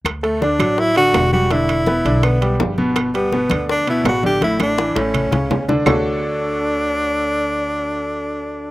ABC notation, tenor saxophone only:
X:1
M:4/4
L:1/8
Q:1/4=165
K:D
V:1 name="Tenor saxophone"
z A, D2 E F2 F | E4 B,2 z2 | z B,3 D E F G | E D2 C4 z |
D8- | D8 |]